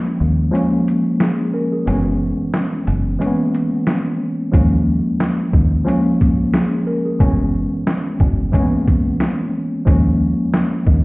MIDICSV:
0, 0, Header, 1, 4, 480
1, 0, Start_track
1, 0, Tempo, 666667
1, 1346, Time_signature, 4, 2, 24, 8
1, 7952, End_track
2, 0, Start_track
2, 0, Title_t, "Tine electric piano"
2, 0, Program_c, 0, 4
2, 0, Control_c, 0, 64, 127
2, 0, Note_on_c, 0, 53, 86
2, 0, Note_on_c, 0, 56, 77
2, 0, Note_on_c, 0, 58, 69
2, 0, Note_on_c, 0, 61, 86
2, 193, Note_off_c, 0, 53, 0
2, 195, Note_off_c, 0, 56, 0
2, 198, Note_off_c, 0, 58, 0
2, 200, Note_off_c, 0, 61, 0
2, 369, Note_on_c, 0, 53, 90
2, 374, Note_on_c, 0, 56, 75
2, 379, Note_on_c, 0, 58, 77
2, 384, Note_on_c, 0, 61, 98
2, 865, Note_off_c, 0, 61, 0
2, 870, Note_on_c, 0, 68, 62
2, 1096, Note_off_c, 0, 68, 0
2, 1106, Note_on_c, 0, 70, 71
2, 1111, Note_on_c, 0, 61, 58
2, 1152, Note_off_c, 0, 53, 0
2, 1154, Note_off_c, 0, 56, 0
2, 1156, Note_off_c, 0, 58, 0
2, 1239, Note_off_c, 0, 70, 0
2, 1240, Note_on_c, 0, 68, 64
2, 1242, Note_off_c, 0, 61, 0
2, 1339, Note_on_c, 0, 52, 82
2, 1344, Note_on_c, 0, 56, 74
2, 1349, Note_on_c, 0, 59, 81
2, 1354, Note_on_c, 0, 61, 91
2, 1355, Control_c, 0, 64, 0
2, 1471, Note_off_c, 0, 68, 0
2, 1485, Control_c, 0, 64, 127
2, 2116, Note_off_c, 0, 52, 0
2, 2119, Note_off_c, 0, 56, 0
2, 2121, Note_off_c, 0, 59, 0
2, 2124, Note_off_c, 0, 61, 0
2, 2294, Note_on_c, 0, 52, 81
2, 2299, Note_on_c, 0, 56, 74
2, 2304, Note_on_c, 0, 58, 61
2, 2308, Note_on_c, 0, 61, 95
2, 2351, Note_on_c, 0, 59, 80
2, 2360, Note_off_c, 0, 58, 0
2, 3074, Note_off_c, 0, 52, 0
2, 3076, Note_off_c, 0, 56, 0
2, 3081, Note_off_c, 0, 61, 0
2, 3102, Note_off_c, 0, 59, 0
2, 3252, Note_on_c, 0, 53, 86
2, 3256, Note_on_c, 0, 56, 74
2, 3262, Note_on_c, 0, 58, 67
2, 3266, Note_on_c, 0, 61, 87
2, 3274, Control_c, 0, 64, 0
2, 3379, Control_c, 0, 64, 127
2, 4033, Note_off_c, 0, 53, 0
2, 4035, Note_off_c, 0, 56, 0
2, 4038, Note_off_c, 0, 58, 0
2, 4040, Note_off_c, 0, 61, 0
2, 4209, Note_on_c, 0, 53, 90
2, 4214, Note_on_c, 0, 56, 73
2, 4218, Note_on_c, 0, 58, 80
2, 4224, Note_on_c, 0, 61, 99
2, 4705, Note_off_c, 0, 61, 0
2, 4710, Note_on_c, 0, 68, 62
2, 4936, Note_off_c, 0, 68, 0
2, 4946, Note_on_c, 0, 70, 75
2, 4949, Note_on_c, 0, 61, 57
2, 4992, Note_off_c, 0, 53, 0
2, 4994, Note_off_c, 0, 56, 0
2, 4996, Note_off_c, 0, 58, 0
2, 5079, Note_off_c, 0, 70, 0
2, 5079, Note_on_c, 0, 68, 65
2, 5081, Note_off_c, 0, 61, 0
2, 5178, Note_on_c, 0, 52, 78
2, 5183, Note_on_c, 0, 56, 75
2, 5188, Note_on_c, 0, 59, 76
2, 5193, Note_on_c, 0, 61, 93
2, 5195, Control_c, 0, 64, 0
2, 5310, Note_off_c, 0, 68, 0
2, 5340, Control_c, 0, 64, 127
2, 5956, Note_off_c, 0, 52, 0
2, 5959, Note_off_c, 0, 56, 0
2, 5961, Note_off_c, 0, 59, 0
2, 5963, Note_off_c, 0, 61, 0
2, 6134, Note_on_c, 0, 52, 86
2, 6139, Note_on_c, 0, 56, 76
2, 6144, Note_on_c, 0, 58, 62
2, 6148, Note_on_c, 0, 61, 102
2, 6191, Note_on_c, 0, 59, 77
2, 6199, Note_off_c, 0, 58, 0
2, 6914, Note_off_c, 0, 52, 0
2, 6917, Note_off_c, 0, 56, 0
2, 6921, Note_off_c, 0, 61, 0
2, 6942, Note_off_c, 0, 59, 0
2, 7093, Note_on_c, 0, 53, 87
2, 7097, Note_on_c, 0, 56, 77
2, 7102, Note_on_c, 0, 58, 69
2, 7107, Note_on_c, 0, 61, 88
2, 7113, Control_c, 0, 64, 0
2, 7247, Control_c, 0, 64, 127
2, 7873, Note_off_c, 0, 53, 0
2, 7876, Note_off_c, 0, 56, 0
2, 7878, Note_off_c, 0, 58, 0
2, 7881, Note_off_c, 0, 61, 0
2, 7952, End_track
3, 0, Start_track
3, 0, Title_t, "Fingered electric bass"
3, 0, Program_c, 1, 33
3, 148, Note_on_c, 1, 39, 95
3, 353, Note_off_c, 1, 39, 0
3, 1349, Note_on_c, 1, 30, 104
3, 1675, Note_off_c, 1, 30, 0
3, 2069, Note_on_c, 1, 30, 89
3, 2274, Note_off_c, 1, 30, 0
3, 3267, Note_on_c, 1, 39, 102
3, 3594, Note_off_c, 1, 39, 0
3, 3986, Note_on_c, 1, 39, 91
3, 4192, Note_off_c, 1, 39, 0
3, 5187, Note_on_c, 1, 30, 99
3, 5514, Note_off_c, 1, 30, 0
3, 5906, Note_on_c, 1, 30, 89
3, 6112, Note_off_c, 1, 30, 0
3, 7107, Note_on_c, 1, 39, 105
3, 7434, Note_off_c, 1, 39, 0
3, 7826, Note_on_c, 1, 39, 96
3, 7952, Note_off_c, 1, 39, 0
3, 7952, End_track
4, 0, Start_track
4, 0, Title_t, "Drums"
4, 395, Note_on_c, 9, 42, 90
4, 467, Note_off_c, 9, 42, 0
4, 633, Note_on_c, 9, 42, 49
4, 705, Note_off_c, 9, 42, 0
4, 866, Note_on_c, 9, 38, 112
4, 869, Note_on_c, 9, 42, 70
4, 938, Note_off_c, 9, 38, 0
4, 941, Note_off_c, 9, 42, 0
4, 1349, Note_on_c, 9, 42, 108
4, 1421, Note_off_c, 9, 42, 0
4, 1826, Note_on_c, 9, 38, 114
4, 1830, Note_on_c, 9, 42, 65
4, 1898, Note_off_c, 9, 38, 0
4, 1902, Note_off_c, 9, 42, 0
4, 2069, Note_on_c, 9, 42, 61
4, 2141, Note_off_c, 9, 42, 0
4, 2315, Note_on_c, 9, 42, 88
4, 2387, Note_off_c, 9, 42, 0
4, 2553, Note_on_c, 9, 42, 49
4, 2625, Note_off_c, 9, 42, 0
4, 2785, Note_on_c, 9, 38, 117
4, 2788, Note_on_c, 9, 42, 71
4, 2857, Note_off_c, 9, 38, 0
4, 2860, Note_off_c, 9, 42, 0
4, 3266, Note_on_c, 9, 36, 120
4, 3268, Note_on_c, 9, 42, 108
4, 3338, Note_off_c, 9, 36, 0
4, 3340, Note_off_c, 9, 42, 0
4, 3746, Note_on_c, 9, 38, 113
4, 3750, Note_on_c, 9, 42, 68
4, 3818, Note_off_c, 9, 38, 0
4, 3822, Note_off_c, 9, 42, 0
4, 3984, Note_on_c, 9, 36, 90
4, 4056, Note_off_c, 9, 36, 0
4, 4235, Note_on_c, 9, 42, 90
4, 4307, Note_off_c, 9, 42, 0
4, 4472, Note_on_c, 9, 36, 90
4, 4473, Note_on_c, 9, 42, 49
4, 4544, Note_off_c, 9, 36, 0
4, 4545, Note_off_c, 9, 42, 0
4, 4706, Note_on_c, 9, 38, 111
4, 4709, Note_on_c, 9, 42, 73
4, 4778, Note_off_c, 9, 38, 0
4, 4781, Note_off_c, 9, 42, 0
4, 5186, Note_on_c, 9, 36, 121
4, 5189, Note_on_c, 9, 42, 101
4, 5258, Note_off_c, 9, 36, 0
4, 5261, Note_off_c, 9, 42, 0
4, 5666, Note_on_c, 9, 38, 112
4, 5670, Note_on_c, 9, 42, 68
4, 5738, Note_off_c, 9, 38, 0
4, 5742, Note_off_c, 9, 42, 0
4, 5904, Note_on_c, 9, 36, 94
4, 5976, Note_off_c, 9, 36, 0
4, 6143, Note_on_c, 9, 36, 93
4, 6154, Note_on_c, 9, 42, 87
4, 6215, Note_off_c, 9, 36, 0
4, 6226, Note_off_c, 9, 42, 0
4, 6391, Note_on_c, 9, 36, 92
4, 6392, Note_on_c, 9, 42, 49
4, 6463, Note_off_c, 9, 36, 0
4, 6464, Note_off_c, 9, 42, 0
4, 6626, Note_on_c, 9, 38, 117
4, 6629, Note_on_c, 9, 42, 73
4, 6698, Note_off_c, 9, 38, 0
4, 6701, Note_off_c, 9, 42, 0
4, 7106, Note_on_c, 9, 36, 121
4, 7109, Note_on_c, 9, 42, 103
4, 7178, Note_off_c, 9, 36, 0
4, 7181, Note_off_c, 9, 42, 0
4, 7586, Note_on_c, 9, 38, 115
4, 7590, Note_on_c, 9, 42, 67
4, 7658, Note_off_c, 9, 38, 0
4, 7662, Note_off_c, 9, 42, 0
4, 7824, Note_on_c, 9, 36, 92
4, 7896, Note_off_c, 9, 36, 0
4, 7952, End_track
0, 0, End_of_file